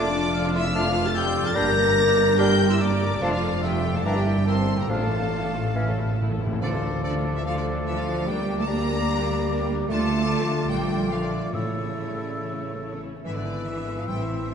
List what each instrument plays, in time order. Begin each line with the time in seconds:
Already playing: double bass section F1, harp F2 A3 D4 F4 A4, cello section F2, french horn section D4, oboe D5, violin section D5 D6, flute A5
0.05 viola section D4 F4
0.14 viola section F4 A4
0.26 viola section D4 F4
0.35 viola section F4 A4, oboe F5
0.46 viola section D4 F4
0.53 french horn section E4, viola section F4 A4, violin section E5 E6, flute C6
0.65 viola section D4 F4
0.75 bassoon A3, clarinet D4, french horn section F4, viola section F4 A4, violin section F5 F6, flute D6
0.85 viola section D4 F4
0.95 viola section F4 A4
1.04 viola section D4 F4, french horn section A4, violin section A5 A6, flute F6
1.14 viola section F4 A4, french horn section G4, oboe D5, violin section G5 G6, flute E6
1.25 viola section D4 F4
1.36 harp G2, viola section F4 A4
1.44 harp A#3, viola section D4 F4, french horn section A4, violin section A5 A6, flute F6
1.48 harp D4
1.53 double bass section G1, cello section G2, bassoon G3, clarinet D4, french horn section A#4, harp D5, violin section A#5 A#6, flute G6
1.57 viola section A#3 A#4
1.67 viola section D4 G4
1.77 viola section A#3 A#4
1.87 viola section D4 G4
1.96 viola section A#3 A#4, oboe D5
2.08 viola section D4 G4
2.18 viola section A#3 A#4
2.28 viola section D4 G4
2.37 bassoon G3, viola section A#3 A#4, clarinet D4, french horn section G4, oboe A#4, violin section G5 G6, flute D6
2.49 viola section D4 G4
2.60 viola section A#3 A#4
2.68 viola section D4 G4, french horn section E4, violin section E5 E6, flute C6
2.79 viola section A#3 A#4, french horn section D4, oboe D5, violin section D5 D6, flute A#5
2.92 viola section D4 G4
3.02 harp F2, viola section A#3 A#4
3.08 harp A3, viola section D4 G4
3.13 harp D4
3.18 double bass section F1, cello section F2, harp D5
3.22 bassoon F3, french horn section A3, clarinet D4, viola section F4 A4, violin section A4 A5, flute F5
3.31 french horn section F3, viola section D4 F4, violin section F4 F5, flute D5
3.43 viola section F4 A4
3.53 viola section D4 F4
3.61 french horn section G3, viola section F4 A4, violin section G4 G5, flute E5, oboe E5
3.73 viola section D4 F4
3.82 viola section F4 A4
3.87 harp G2
3.91 harp A#3, viola section D4 F4, flute F5
3.95 french horn section A3, harp E4, violin section A4 A5
4.00 double bass section G1, harp D5, flute G5
4.05 cello section G2, bassoon E3, french horn section A#3, clarinet D4, viola section E4 A#4, violin section A#4 A#5, oboe D5
4.14 french horn section G3, viola section D4 G4, violin section G4 G5, flute E5
4.26 viola section E4 A#4
4.36 viola section D4 G4
4.45 french horn section C4, viola section E4 A#4, violin section C5 C6, oboe E5, flute A5
4.57 viola section D4 G4
4.67 viola section E4 A#4
4.71 harp A2
4.76 harp A3, french horn section A#3, viola section D4 G4, violin section A#4, flute G5
4.80 harp F4, violin section A#5
4.85 timpani A2, harp D5
4.89 double bass section A1, cello section A2, bassoon F3, french horn section A3, viola section A3 F4, clarinet D4, violin section A4 A5, flute F5, oboe F5
5.01 viola section D4 A4
5.12 viola section A3 F4
5.22 viola section D4 A4
5.33 viola section A3 F4
5.44 viola section D4 A4
5.54 viola section A3 F4
5.58 harp A2
5.62 harp A3, viola section D4 A4
5.67 harp E4
5.71 bassoon E3, clarinet C#4, harp C#5
5.76 timpani A2, viola section A3 E4
5.83 timpani A2
5.88 timpani A2, viola section C#4 A4
5.98 timpani A2, viola section A3 E4
6.06 timpani A2
6.11 timpani A2, viola section C#4 A4
6.20 timpani A2, viola section A3 E4
6.30 timpani A2, viola section C#4 A4
6.38 timpani A2, viola section A3 E4
6.46 timpani A2
6.53 timpani A2, viola section C#4 A4
6.61 double bass section D2, harp D3, timpani D3, cello section D3, bassoon F3, viola section F3 D4, french horn section A3 F4, clarinet A4, violin section A4 D5, oboe D5, flute A5
6.71 cello section C3, viola section A3 F4, violin section F4 C5
6.83 viola section F3 D4, harp A3, violin section A4
6.95 viola section A3 F4, violin section F4
7.03 cello section D3, bassoon F3, viola section F3 D4, clarinet A4, violin section A4 D5, harp D5, oboe D5, flute A5
7.15 viola section A3 F4, violin section F4
7.24 viola section F3 D4, harp F4, violin section A4
7.35 cello section E3, viola section A3 F4, violin section F4 E5
7.43 bassoon F3, viola section F3 D4, cello section F3, harp D4, clarinet A4, violin section A4 F5, oboe D5, flute A5
7.56 cello section D3, viola section A3 F4, violin section F4 D5
7.66 viola section F3 D4, harp A3, violin section A4
7.77 viola section A3 F4, violin section F4
7.86 cello section E3, viola section F3 D4, violin section A4 E5, harp D5
7.96 cello section F3, viola section A3 F4, violin section F4 F5
8.07 viola section F3 D4, harp F4, violin section A4
8.19 viola section A3 F4, violin section F4
8.26 timpani D3, harp D3, cello section G3, bassoon G3, french horn section G3 G4, viola section A#3 D4, clarinet G4, violin section A#4 G5, oboe D5, flute D6
8.37 viola section G3 A#3, violin section G4
8.47 harp G3, viola section A#3 D4, violin section A#4
8.57 viola section G3 A#3, cello section A3, violin section G4 A5
8.67 bassoon G3, cello section A#3, viola section A#3 D4, clarinet G4, violin section A#4 A#5, harp D5, oboe D5, flute D6
8.78 viola section G3 A#3, violin section G4
8.87 viola section A#3 D4, harp G4, violin section A#4
8.99 viola section G3 A#3, violin section G4
9.09 viola section A#3 D4, harp D4, violin section A#4
9.20 viola section G3 A#3, violin section G4
9.29 harp G3, viola section A#3 D4, violin section A#4
9.40 viola section G3 A#3, violin section G4
9.50 viola section A#3 D4, violin section A#4, harp D5
9.61 viola section G3 A#3, violin section G4
9.70 viola section A#3 D4, harp G4, violin section A#4
9.80 viola section G3 A#3, violin section G4
9.88 double bass section D2, timpani D3, harp D3, viola section D3 D4, bassoon A3, cello section A3, french horn section A3 F4, clarinet F4, violin section F4 A5, oboe D5, flute D6
10.00 viola section F3 F4, violin section A4
10.09 viola section D3 D4, harp A3, violin section F4
10.19 viola section F3 F4, violin section A4
10.30 viola section D3 D4, violin section F4, harp D5
10.40 viola section F3 F4, violin section A4
10.50 viola section D3 D4, violin section F4, harp F4
10.60 viola section F3 F4, violin section A4
10.70 double bass section A#1, harp A#2, viola section D3 D4, cello section G3, bassoon A3, clarinet F4, violin section A#4 G5, oboe D5, flute D6
10.79 viola section F3 F4, violin section A4
10.90 viola section D3 D4, harp A3, violin section A#4
11.00 viola section F3 F4, violin section A4
11.11 viola section D3 D4, cello section F3, bassoon A3, clarinet F4, violin section A#4 F5, oboe D5, harp D5, flute D6
11.22 cello section D3, viola section F3 F4, violin section A4 D5
11.32 viola section D3 D4, harp F4, violin section A#4
11.42 viola section F3 F4, violin section A4
11.53 double bass section A1, timpani A2, harp A2, cello section C#3, bassoon A3, viola section C#4 E4, clarinet E4, oboe A4, violin section C#5, flute E6
11.64 viola section A3 C#4, violin section A4
11.75 harp A3, viola section C#4 E4, violin section C#5
11.86 viola section A3 C#4, violin section A4
11.96 french horn section A3, viola section C#4 E4, violin section C#5
12.07 french horn section G3, viola section A3 C#4, violin section A4
12.20 viola section C#4 E4, harp A4, violin section C#5
12.30 viola section A3 C#4, violin section A4
12.38 harp E3, french horn section A3, viola section C#4 E4, violin section C#5
12.52 viola section A3 C#4, violin section A4
12.62 harp A3, viola section C#4 E4, violin section C#5
12.70 viola section A3 C#4, french horn section A#3
12.74 violin section A4
12.81 french horn section C#4, viola section C#4 E4, violin section C#5, harp E5
12.91 french horn section A3, viola section A3 C#4, violin section A4
13.04 viola section C#4 E4, harp A4, violin section C#5
13.14 viola section A3 C#4, violin section A4
13.24 double bass section G#1, harp G#2, viola section D3 E4, bassoon E3, cello section E3, french horn section B3 E4, clarinet E4, violin section G#4 E5, oboe B4, flute E6
13.34 cello section D3, viola section E3 D4, violin section B4 D5
13.46 viola section D3 E4, harp B3, violin section G#4
13.56 viola section E3 D4, violin section B4
13.64 viola section D3 E4, cello section E3, french horn section B3 E4, violin section G#4 E5
13.69 harp E5
13.76 viola section E3 D4, violin section B4
13.88 viola section D3 E4, harp E4, violin section G#4
13.98 viola section E3 D4, cello section F3, violin section B4 F5
14.08 double bass section A1, timpani A2, harp A2, cello section G3, viola section A3 E4, french horn section C4 E4, violin section A4 G5, oboe C5
14.19 cello section E3, viola section E3 C4, violin section C5 E5
14.29 viola section A3 E4, harp C4, violin section A4
14.39 viola section E3 C4, violin section C5
14.50 viola section A3 E4, violin section A4